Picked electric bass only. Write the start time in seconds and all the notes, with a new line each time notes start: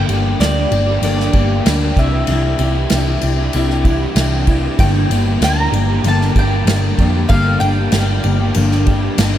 0.08 G1
0.39 D2
0.72 G1
1.02 G1
1.34 G1
1.66 D2
1.96 C2
2.28 C2
2.59 C2
2.91 C2
3.23 C2
3.55 C2
4.16 C2
4.79 G1
5.10 G1
5.41 D2
5.72 G1
6.04 G1
6.36 G1
6.65 G1
6.99 F2
7.30 G1
7.61 G1
7.92 G1
8.24 G1
8.56 G1
9.18 G1